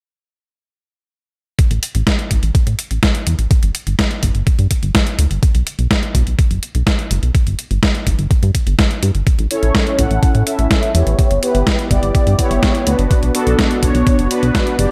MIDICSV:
0, 0, Header, 1, 4, 480
1, 0, Start_track
1, 0, Tempo, 480000
1, 1588, Time_signature, 4, 2, 24, 8
1, 14913, End_track
2, 0, Start_track
2, 0, Title_t, "Analog polysynth"
2, 0, Program_c, 0, 90
2, 9507, Note_on_c, 0, 69, 85
2, 9508, Note_on_c, 0, 61, 95
2, 9508, Note_on_c, 0, 64, 85
2, 9508, Note_on_c, 0, 73, 103
2, 9959, Note_off_c, 0, 61, 0
2, 9959, Note_off_c, 0, 64, 0
2, 9959, Note_off_c, 0, 69, 0
2, 9959, Note_off_c, 0, 73, 0
2, 9988, Note_on_c, 0, 61, 79
2, 9988, Note_on_c, 0, 64, 73
2, 9988, Note_on_c, 0, 69, 73
2, 9988, Note_on_c, 0, 78, 88
2, 10439, Note_off_c, 0, 61, 0
2, 10439, Note_off_c, 0, 64, 0
2, 10439, Note_off_c, 0, 69, 0
2, 10439, Note_off_c, 0, 78, 0
2, 10468, Note_on_c, 0, 61, 89
2, 10468, Note_on_c, 0, 64, 82
2, 10468, Note_on_c, 0, 69, 78
2, 10468, Note_on_c, 0, 76, 95
2, 10919, Note_off_c, 0, 61, 0
2, 10919, Note_off_c, 0, 64, 0
2, 10919, Note_off_c, 0, 69, 0
2, 10919, Note_off_c, 0, 76, 0
2, 10948, Note_on_c, 0, 59, 77
2, 10948, Note_on_c, 0, 73, 81
2, 10949, Note_on_c, 0, 64, 69
2, 10949, Note_on_c, 0, 67, 70
2, 11399, Note_off_c, 0, 59, 0
2, 11399, Note_off_c, 0, 64, 0
2, 11399, Note_off_c, 0, 67, 0
2, 11399, Note_off_c, 0, 73, 0
2, 11428, Note_on_c, 0, 59, 92
2, 11428, Note_on_c, 0, 67, 86
2, 11429, Note_on_c, 0, 64, 83
2, 11429, Note_on_c, 0, 71, 106
2, 11879, Note_off_c, 0, 59, 0
2, 11879, Note_off_c, 0, 64, 0
2, 11879, Note_off_c, 0, 67, 0
2, 11879, Note_off_c, 0, 71, 0
2, 11908, Note_on_c, 0, 59, 80
2, 11908, Note_on_c, 0, 67, 74
2, 11908, Note_on_c, 0, 74, 92
2, 11909, Note_on_c, 0, 64, 71
2, 12359, Note_off_c, 0, 59, 0
2, 12359, Note_off_c, 0, 64, 0
2, 12359, Note_off_c, 0, 67, 0
2, 12359, Note_off_c, 0, 74, 0
2, 12388, Note_on_c, 0, 59, 90
2, 12388, Note_on_c, 0, 64, 84
2, 12388, Note_on_c, 0, 67, 80
2, 12388, Note_on_c, 0, 73, 99
2, 12839, Note_off_c, 0, 59, 0
2, 12839, Note_off_c, 0, 64, 0
2, 12839, Note_off_c, 0, 67, 0
2, 12839, Note_off_c, 0, 73, 0
2, 12868, Note_on_c, 0, 59, 77
2, 12868, Note_on_c, 0, 62, 68
2, 12868, Note_on_c, 0, 66, 69
2, 12868, Note_on_c, 0, 71, 83
2, 13319, Note_off_c, 0, 59, 0
2, 13319, Note_off_c, 0, 62, 0
2, 13319, Note_off_c, 0, 66, 0
2, 13319, Note_off_c, 0, 71, 0
2, 13348, Note_on_c, 0, 62, 88
2, 13348, Note_on_c, 0, 69, 102
2, 13349, Note_on_c, 0, 59, 97
2, 13349, Note_on_c, 0, 66, 88
2, 13799, Note_off_c, 0, 59, 0
2, 13799, Note_off_c, 0, 62, 0
2, 13799, Note_off_c, 0, 66, 0
2, 13799, Note_off_c, 0, 69, 0
2, 13828, Note_on_c, 0, 59, 83
2, 13828, Note_on_c, 0, 62, 75
2, 13828, Note_on_c, 0, 66, 74
2, 13828, Note_on_c, 0, 73, 91
2, 14279, Note_off_c, 0, 59, 0
2, 14279, Note_off_c, 0, 62, 0
2, 14279, Note_off_c, 0, 66, 0
2, 14279, Note_off_c, 0, 73, 0
2, 14308, Note_on_c, 0, 59, 89
2, 14308, Note_on_c, 0, 62, 80
2, 14308, Note_on_c, 0, 66, 80
2, 14308, Note_on_c, 0, 71, 99
2, 14759, Note_off_c, 0, 59, 0
2, 14759, Note_off_c, 0, 62, 0
2, 14759, Note_off_c, 0, 66, 0
2, 14759, Note_off_c, 0, 71, 0
2, 14787, Note_on_c, 0, 62, 71
2, 14788, Note_on_c, 0, 59, 75
2, 14788, Note_on_c, 0, 67, 72
2, 14788, Note_on_c, 0, 74, 87
2, 14913, Note_off_c, 0, 59, 0
2, 14913, Note_off_c, 0, 62, 0
2, 14913, Note_off_c, 0, 67, 0
2, 14913, Note_off_c, 0, 74, 0
2, 14913, End_track
3, 0, Start_track
3, 0, Title_t, "Analog synth bass"
3, 0, Program_c, 1, 38
3, 1708, Note_on_c, 1, 33, 73
3, 1793, Note_off_c, 1, 33, 0
3, 1947, Note_on_c, 1, 33, 82
3, 2033, Note_off_c, 1, 33, 0
3, 2307, Note_on_c, 1, 33, 87
3, 2393, Note_off_c, 1, 33, 0
3, 2428, Note_on_c, 1, 33, 80
3, 2513, Note_off_c, 1, 33, 0
3, 2668, Note_on_c, 1, 45, 71
3, 2753, Note_off_c, 1, 45, 0
3, 2908, Note_on_c, 1, 33, 76
3, 2993, Note_off_c, 1, 33, 0
3, 3268, Note_on_c, 1, 40, 86
3, 3353, Note_off_c, 1, 40, 0
3, 3387, Note_on_c, 1, 33, 75
3, 3472, Note_off_c, 1, 33, 0
3, 3627, Note_on_c, 1, 31, 73
3, 3713, Note_off_c, 1, 31, 0
3, 3868, Note_on_c, 1, 31, 81
3, 3953, Note_off_c, 1, 31, 0
3, 4227, Note_on_c, 1, 31, 91
3, 4312, Note_off_c, 1, 31, 0
3, 4348, Note_on_c, 1, 31, 79
3, 4433, Note_off_c, 1, 31, 0
3, 4588, Note_on_c, 1, 43, 73
3, 4673, Note_off_c, 1, 43, 0
3, 4828, Note_on_c, 1, 31, 82
3, 4913, Note_off_c, 1, 31, 0
3, 5187, Note_on_c, 1, 38, 85
3, 5272, Note_off_c, 1, 38, 0
3, 5307, Note_on_c, 1, 31, 76
3, 5393, Note_off_c, 1, 31, 0
3, 5547, Note_on_c, 1, 35, 71
3, 5632, Note_off_c, 1, 35, 0
3, 5787, Note_on_c, 1, 35, 78
3, 5873, Note_off_c, 1, 35, 0
3, 6146, Note_on_c, 1, 35, 89
3, 6232, Note_off_c, 1, 35, 0
3, 6268, Note_on_c, 1, 35, 77
3, 6353, Note_off_c, 1, 35, 0
3, 6507, Note_on_c, 1, 30, 74
3, 6593, Note_off_c, 1, 30, 0
3, 6747, Note_on_c, 1, 35, 80
3, 6833, Note_off_c, 1, 35, 0
3, 7107, Note_on_c, 1, 30, 88
3, 7193, Note_off_c, 1, 30, 0
3, 7228, Note_on_c, 1, 35, 79
3, 7313, Note_off_c, 1, 35, 0
3, 7468, Note_on_c, 1, 31, 75
3, 7553, Note_off_c, 1, 31, 0
3, 7707, Note_on_c, 1, 31, 81
3, 7793, Note_off_c, 1, 31, 0
3, 8066, Note_on_c, 1, 31, 91
3, 8152, Note_off_c, 1, 31, 0
3, 8188, Note_on_c, 1, 31, 80
3, 8273, Note_off_c, 1, 31, 0
3, 8427, Note_on_c, 1, 43, 76
3, 8513, Note_off_c, 1, 43, 0
3, 8668, Note_on_c, 1, 31, 82
3, 8753, Note_off_c, 1, 31, 0
3, 9028, Note_on_c, 1, 43, 89
3, 9113, Note_off_c, 1, 43, 0
3, 9147, Note_on_c, 1, 31, 75
3, 9233, Note_off_c, 1, 31, 0
3, 9387, Note_on_c, 1, 33, 74
3, 9473, Note_off_c, 1, 33, 0
3, 9627, Note_on_c, 1, 33, 82
3, 9713, Note_off_c, 1, 33, 0
3, 9987, Note_on_c, 1, 33, 93
3, 10072, Note_off_c, 1, 33, 0
3, 10107, Note_on_c, 1, 33, 80
3, 10193, Note_off_c, 1, 33, 0
3, 10347, Note_on_c, 1, 45, 76
3, 10433, Note_off_c, 1, 45, 0
3, 10586, Note_on_c, 1, 33, 80
3, 10672, Note_off_c, 1, 33, 0
3, 10946, Note_on_c, 1, 40, 89
3, 11032, Note_off_c, 1, 40, 0
3, 11066, Note_on_c, 1, 33, 75
3, 11152, Note_off_c, 1, 33, 0
3, 11307, Note_on_c, 1, 31, 72
3, 11392, Note_off_c, 1, 31, 0
3, 11546, Note_on_c, 1, 31, 81
3, 11632, Note_off_c, 1, 31, 0
3, 11906, Note_on_c, 1, 31, 89
3, 11992, Note_off_c, 1, 31, 0
3, 12028, Note_on_c, 1, 31, 80
3, 12113, Note_off_c, 1, 31, 0
3, 12268, Note_on_c, 1, 43, 73
3, 12353, Note_off_c, 1, 43, 0
3, 12507, Note_on_c, 1, 31, 81
3, 12593, Note_off_c, 1, 31, 0
3, 12868, Note_on_c, 1, 38, 88
3, 12953, Note_off_c, 1, 38, 0
3, 12988, Note_on_c, 1, 31, 78
3, 13073, Note_off_c, 1, 31, 0
3, 13227, Note_on_c, 1, 35, 72
3, 13313, Note_off_c, 1, 35, 0
3, 13468, Note_on_c, 1, 35, 86
3, 13553, Note_off_c, 1, 35, 0
3, 13826, Note_on_c, 1, 35, 92
3, 13912, Note_off_c, 1, 35, 0
3, 13947, Note_on_c, 1, 35, 80
3, 14033, Note_off_c, 1, 35, 0
3, 14188, Note_on_c, 1, 30, 76
3, 14273, Note_off_c, 1, 30, 0
3, 14428, Note_on_c, 1, 35, 79
3, 14513, Note_off_c, 1, 35, 0
3, 14788, Note_on_c, 1, 30, 94
3, 14873, Note_off_c, 1, 30, 0
3, 14913, End_track
4, 0, Start_track
4, 0, Title_t, "Drums"
4, 1587, Note_on_c, 9, 36, 105
4, 1587, Note_on_c, 9, 42, 60
4, 1687, Note_off_c, 9, 36, 0
4, 1687, Note_off_c, 9, 42, 0
4, 1708, Note_on_c, 9, 42, 38
4, 1808, Note_off_c, 9, 42, 0
4, 1828, Note_on_c, 9, 42, 90
4, 1928, Note_off_c, 9, 42, 0
4, 1948, Note_on_c, 9, 42, 37
4, 2048, Note_off_c, 9, 42, 0
4, 2067, Note_on_c, 9, 36, 108
4, 2068, Note_on_c, 9, 38, 102
4, 2068, Note_on_c, 9, 42, 64
4, 2167, Note_off_c, 9, 36, 0
4, 2168, Note_off_c, 9, 38, 0
4, 2168, Note_off_c, 9, 42, 0
4, 2188, Note_on_c, 9, 42, 36
4, 2288, Note_off_c, 9, 42, 0
4, 2307, Note_on_c, 9, 36, 57
4, 2308, Note_on_c, 9, 42, 90
4, 2407, Note_off_c, 9, 36, 0
4, 2408, Note_off_c, 9, 42, 0
4, 2428, Note_on_c, 9, 42, 37
4, 2528, Note_off_c, 9, 42, 0
4, 2547, Note_on_c, 9, 36, 107
4, 2548, Note_on_c, 9, 42, 60
4, 2647, Note_off_c, 9, 36, 0
4, 2648, Note_off_c, 9, 42, 0
4, 2668, Note_on_c, 9, 42, 40
4, 2768, Note_off_c, 9, 42, 0
4, 2788, Note_on_c, 9, 42, 89
4, 2888, Note_off_c, 9, 42, 0
4, 2908, Note_on_c, 9, 42, 38
4, 3008, Note_off_c, 9, 42, 0
4, 3027, Note_on_c, 9, 36, 111
4, 3028, Note_on_c, 9, 38, 105
4, 3028, Note_on_c, 9, 42, 60
4, 3127, Note_off_c, 9, 36, 0
4, 3128, Note_off_c, 9, 38, 0
4, 3128, Note_off_c, 9, 42, 0
4, 3147, Note_on_c, 9, 42, 38
4, 3247, Note_off_c, 9, 42, 0
4, 3267, Note_on_c, 9, 42, 87
4, 3367, Note_off_c, 9, 42, 0
4, 3387, Note_on_c, 9, 42, 38
4, 3487, Note_off_c, 9, 42, 0
4, 3507, Note_on_c, 9, 36, 113
4, 3507, Note_on_c, 9, 42, 58
4, 3607, Note_off_c, 9, 36, 0
4, 3607, Note_off_c, 9, 42, 0
4, 3627, Note_on_c, 9, 42, 38
4, 3727, Note_off_c, 9, 42, 0
4, 3747, Note_on_c, 9, 42, 89
4, 3847, Note_off_c, 9, 42, 0
4, 3868, Note_on_c, 9, 42, 36
4, 3968, Note_off_c, 9, 42, 0
4, 3987, Note_on_c, 9, 36, 111
4, 3988, Note_on_c, 9, 38, 109
4, 3988, Note_on_c, 9, 42, 62
4, 4087, Note_off_c, 9, 36, 0
4, 4088, Note_off_c, 9, 38, 0
4, 4088, Note_off_c, 9, 42, 0
4, 4107, Note_on_c, 9, 42, 36
4, 4207, Note_off_c, 9, 42, 0
4, 4227, Note_on_c, 9, 36, 58
4, 4227, Note_on_c, 9, 42, 90
4, 4327, Note_off_c, 9, 36, 0
4, 4327, Note_off_c, 9, 42, 0
4, 4347, Note_on_c, 9, 42, 35
4, 4447, Note_off_c, 9, 42, 0
4, 4467, Note_on_c, 9, 36, 111
4, 4467, Note_on_c, 9, 42, 57
4, 4567, Note_off_c, 9, 36, 0
4, 4567, Note_off_c, 9, 42, 0
4, 4587, Note_on_c, 9, 42, 38
4, 4687, Note_off_c, 9, 42, 0
4, 4707, Note_on_c, 9, 36, 61
4, 4707, Note_on_c, 9, 42, 89
4, 4807, Note_off_c, 9, 36, 0
4, 4807, Note_off_c, 9, 42, 0
4, 4827, Note_on_c, 9, 42, 37
4, 4927, Note_off_c, 9, 42, 0
4, 4947, Note_on_c, 9, 36, 111
4, 4947, Note_on_c, 9, 38, 116
4, 4947, Note_on_c, 9, 42, 60
4, 5047, Note_off_c, 9, 36, 0
4, 5047, Note_off_c, 9, 38, 0
4, 5047, Note_off_c, 9, 42, 0
4, 5067, Note_on_c, 9, 42, 38
4, 5167, Note_off_c, 9, 42, 0
4, 5187, Note_on_c, 9, 42, 86
4, 5287, Note_off_c, 9, 42, 0
4, 5307, Note_on_c, 9, 42, 37
4, 5407, Note_off_c, 9, 42, 0
4, 5427, Note_on_c, 9, 36, 109
4, 5427, Note_on_c, 9, 42, 59
4, 5527, Note_off_c, 9, 36, 0
4, 5527, Note_off_c, 9, 42, 0
4, 5547, Note_on_c, 9, 42, 37
4, 5647, Note_off_c, 9, 42, 0
4, 5667, Note_on_c, 9, 42, 84
4, 5767, Note_off_c, 9, 42, 0
4, 5788, Note_on_c, 9, 42, 36
4, 5887, Note_off_c, 9, 42, 0
4, 5906, Note_on_c, 9, 36, 118
4, 5908, Note_on_c, 9, 38, 110
4, 5908, Note_on_c, 9, 42, 58
4, 6006, Note_off_c, 9, 36, 0
4, 6008, Note_off_c, 9, 38, 0
4, 6008, Note_off_c, 9, 42, 0
4, 6028, Note_on_c, 9, 42, 34
4, 6128, Note_off_c, 9, 42, 0
4, 6146, Note_on_c, 9, 36, 61
4, 6148, Note_on_c, 9, 42, 84
4, 6246, Note_off_c, 9, 36, 0
4, 6248, Note_off_c, 9, 42, 0
4, 6268, Note_on_c, 9, 42, 35
4, 6368, Note_off_c, 9, 42, 0
4, 6386, Note_on_c, 9, 36, 114
4, 6388, Note_on_c, 9, 42, 55
4, 6486, Note_off_c, 9, 36, 0
4, 6488, Note_off_c, 9, 42, 0
4, 6508, Note_on_c, 9, 42, 38
4, 6608, Note_off_c, 9, 42, 0
4, 6627, Note_on_c, 9, 42, 83
4, 6727, Note_off_c, 9, 42, 0
4, 6748, Note_on_c, 9, 42, 36
4, 6848, Note_off_c, 9, 42, 0
4, 6866, Note_on_c, 9, 36, 118
4, 6868, Note_on_c, 9, 38, 112
4, 6868, Note_on_c, 9, 42, 59
4, 6966, Note_off_c, 9, 36, 0
4, 6968, Note_off_c, 9, 38, 0
4, 6968, Note_off_c, 9, 42, 0
4, 6988, Note_on_c, 9, 42, 36
4, 7088, Note_off_c, 9, 42, 0
4, 7108, Note_on_c, 9, 42, 84
4, 7208, Note_off_c, 9, 42, 0
4, 7228, Note_on_c, 9, 42, 36
4, 7328, Note_off_c, 9, 42, 0
4, 7346, Note_on_c, 9, 36, 110
4, 7348, Note_on_c, 9, 42, 55
4, 7446, Note_off_c, 9, 36, 0
4, 7448, Note_off_c, 9, 42, 0
4, 7467, Note_on_c, 9, 42, 37
4, 7567, Note_off_c, 9, 42, 0
4, 7587, Note_on_c, 9, 42, 80
4, 7687, Note_off_c, 9, 42, 0
4, 7708, Note_on_c, 9, 42, 34
4, 7808, Note_off_c, 9, 42, 0
4, 7827, Note_on_c, 9, 36, 118
4, 7827, Note_on_c, 9, 38, 109
4, 7827, Note_on_c, 9, 42, 56
4, 7927, Note_off_c, 9, 36, 0
4, 7927, Note_off_c, 9, 38, 0
4, 7927, Note_off_c, 9, 42, 0
4, 7948, Note_on_c, 9, 42, 34
4, 8048, Note_off_c, 9, 42, 0
4, 8066, Note_on_c, 9, 36, 59
4, 8067, Note_on_c, 9, 42, 83
4, 8166, Note_off_c, 9, 36, 0
4, 8167, Note_off_c, 9, 42, 0
4, 8187, Note_on_c, 9, 42, 33
4, 8287, Note_off_c, 9, 42, 0
4, 8306, Note_on_c, 9, 36, 113
4, 8307, Note_on_c, 9, 42, 53
4, 8406, Note_off_c, 9, 36, 0
4, 8407, Note_off_c, 9, 42, 0
4, 8427, Note_on_c, 9, 42, 36
4, 8527, Note_off_c, 9, 42, 0
4, 8546, Note_on_c, 9, 36, 59
4, 8547, Note_on_c, 9, 42, 84
4, 8646, Note_off_c, 9, 36, 0
4, 8647, Note_off_c, 9, 42, 0
4, 8667, Note_on_c, 9, 42, 36
4, 8767, Note_off_c, 9, 42, 0
4, 8786, Note_on_c, 9, 36, 120
4, 8787, Note_on_c, 9, 38, 110
4, 8787, Note_on_c, 9, 42, 55
4, 8886, Note_off_c, 9, 36, 0
4, 8887, Note_off_c, 9, 38, 0
4, 8887, Note_off_c, 9, 42, 0
4, 8907, Note_on_c, 9, 42, 34
4, 9007, Note_off_c, 9, 42, 0
4, 9026, Note_on_c, 9, 42, 81
4, 9126, Note_off_c, 9, 42, 0
4, 9147, Note_on_c, 9, 42, 34
4, 9247, Note_off_c, 9, 42, 0
4, 9266, Note_on_c, 9, 36, 106
4, 9267, Note_on_c, 9, 42, 55
4, 9366, Note_off_c, 9, 36, 0
4, 9367, Note_off_c, 9, 42, 0
4, 9387, Note_on_c, 9, 42, 34
4, 9487, Note_off_c, 9, 42, 0
4, 9507, Note_on_c, 9, 42, 82
4, 9607, Note_off_c, 9, 42, 0
4, 9627, Note_on_c, 9, 42, 36
4, 9727, Note_off_c, 9, 42, 0
4, 9746, Note_on_c, 9, 36, 110
4, 9747, Note_on_c, 9, 38, 104
4, 9747, Note_on_c, 9, 42, 55
4, 9846, Note_off_c, 9, 36, 0
4, 9847, Note_off_c, 9, 38, 0
4, 9847, Note_off_c, 9, 42, 0
4, 9867, Note_on_c, 9, 42, 34
4, 9967, Note_off_c, 9, 42, 0
4, 9986, Note_on_c, 9, 36, 59
4, 9986, Note_on_c, 9, 42, 86
4, 10086, Note_off_c, 9, 36, 0
4, 10086, Note_off_c, 9, 42, 0
4, 10107, Note_on_c, 9, 42, 34
4, 10207, Note_off_c, 9, 42, 0
4, 10227, Note_on_c, 9, 36, 109
4, 10227, Note_on_c, 9, 42, 57
4, 10327, Note_off_c, 9, 36, 0
4, 10327, Note_off_c, 9, 42, 0
4, 10347, Note_on_c, 9, 42, 36
4, 10447, Note_off_c, 9, 42, 0
4, 10468, Note_on_c, 9, 42, 85
4, 10567, Note_off_c, 9, 42, 0
4, 10588, Note_on_c, 9, 42, 35
4, 10688, Note_off_c, 9, 42, 0
4, 10707, Note_on_c, 9, 36, 116
4, 10708, Note_on_c, 9, 38, 108
4, 10708, Note_on_c, 9, 42, 57
4, 10807, Note_off_c, 9, 36, 0
4, 10808, Note_off_c, 9, 38, 0
4, 10808, Note_off_c, 9, 42, 0
4, 10828, Note_on_c, 9, 42, 36
4, 10928, Note_off_c, 9, 42, 0
4, 10947, Note_on_c, 9, 42, 83
4, 11047, Note_off_c, 9, 42, 0
4, 11067, Note_on_c, 9, 42, 35
4, 11167, Note_off_c, 9, 42, 0
4, 11187, Note_on_c, 9, 36, 103
4, 11187, Note_on_c, 9, 42, 58
4, 11287, Note_off_c, 9, 36, 0
4, 11287, Note_off_c, 9, 42, 0
4, 11307, Note_on_c, 9, 42, 38
4, 11407, Note_off_c, 9, 42, 0
4, 11427, Note_on_c, 9, 42, 88
4, 11527, Note_off_c, 9, 42, 0
4, 11548, Note_on_c, 9, 42, 37
4, 11648, Note_off_c, 9, 42, 0
4, 11667, Note_on_c, 9, 36, 106
4, 11668, Note_on_c, 9, 38, 101
4, 11668, Note_on_c, 9, 42, 56
4, 11767, Note_off_c, 9, 36, 0
4, 11768, Note_off_c, 9, 38, 0
4, 11768, Note_off_c, 9, 42, 0
4, 11788, Note_on_c, 9, 42, 34
4, 11888, Note_off_c, 9, 42, 0
4, 11907, Note_on_c, 9, 36, 57
4, 11908, Note_on_c, 9, 42, 86
4, 12007, Note_off_c, 9, 36, 0
4, 12008, Note_off_c, 9, 42, 0
4, 12028, Note_on_c, 9, 42, 35
4, 12128, Note_off_c, 9, 42, 0
4, 12147, Note_on_c, 9, 36, 105
4, 12148, Note_on_c, 9, 42, 59
4, 12247, Note_off_c, 9, 36, 0
4, 12248, Note_off_c, 9, 42, 0
4, 12268, Note_on_c, 9, 42, 37
4, 12368, Note_off_c, 9, 42, 0
4, 12387, Note_on_c, 9, 36, 58
4, 12388, Note_on_c, 9, 42, 86
4, 12487, Note_off_c, 9, 36, 0
4, 12488, Note_off_c, 9, 42, 0
4, 12508, Note_on_c, 9, 42, 37
4, 12608, Note_off_c, 9, 42, 0
4, 12627, Note_on_c, 9, 36, 107
4, 12628, Note_on_c, 9, 38, 106
4, 12628, Note_on_c, 9, 42, 59
4, 12727, Note_off_c, 9, 36, 0
4, 12728, Note_off_c, 9, 38, 0
4, 12728, Note_off_c, 9, 42, 0
4, 12748, Note_on_c, 9, 42, 37
4, 12848, Note_off_c, 9, 42, 0
4, 12867, Note_on_c, 9, 42, 88
4, 12967, Note_off_c, 9, 42, 0
4, 12987, Note_on_c, 9, 42, 38
4, 13087, Note_off_c, 9, 42, 0
4, 13107, Note_on_c, 9, 36, 103
4, 13107, Note_on_c, 9, 42, 59
4, 13207, Note_off_c, 9, 36, 0
4, 13207, Note_off_c, 9, 42, 0
4, 13227, Note_on_c, 9, 42, 40
4, 13327, Note_off_c, 9, 42, 0
4, 13347, Note_on_c, 9, 42, 91
4, 13447, Note_off_c, 9, 42, 0
4, 13468, Note_on_c, 9, 42, 38
4, 13568, Note_off_c, 9, 42, 0
4, 13587, Note_on_c, 9, 36, 108
4, 13587, Note_on_c, 9, 38, 107
4, 13587, Note_on_c, 9, 42, 64
4, 13687, Note_off_c, 9, 36, 0
4, 13687, Note_off_c, 9, 38, 0
4, 13687, Note_off_c, 9, 42, 0
4, 13708, Note_on_c, 9, 42, 38
4, 13808, Note_off_c, 9, 42, 0
4, 13827, Note_on_c, 9, 36, 56
4, 13827, Note_on_c, 9, 42, 92
4, 13927, Note_off_c, 9, 36, 0
4, 13927, Note_off_c, 9, 42, 0
4, 13947, Note_on_c, 9, 42, 37
4, 14047, Note_off_c, 9, 42, 0
4, 14067, Note_on_c, 9, 36, 108
4, 14067, Note_on_c, 9, 42, 60
4, 14167, Note_off_c, 9, 36, 0
4, 14167, Note_off_c, 9, 42, 0
4, 14188, Note_on_c, 9, 42, 41
4, 14288, Note_off_c, 9, 42, 0
4, 14308, Note_on_c, 9, 42, 90
4, 14408, Note_off_c, 9, 42, 0
4, 14428, Note_on_c, 9, 42, 37
4, 14528, Note_off_c, 9, 42, 0
4, 14547, Note_on_c, 9, 36, 106
4, 14548, Note_on_c, 9, 38, 102
4, 14548, Note_on_c, 9, 42, 61
4, 14647, Note_off_c, 9, 36, 0
4, 14648, Note_off_c, 9, 38, 0
4, 14648, Note_off_c, 9, 42, 0
4, 14668, Note_on_c, 9, 42, 37
4, 14768, Note_off_c, 9, 42, 0
4, 14788, Note_on_c, 9, 42, 90
4, 14888, Note_off_c, 9, 42, 0
4, 14913, End_track
0, 0, End_of_file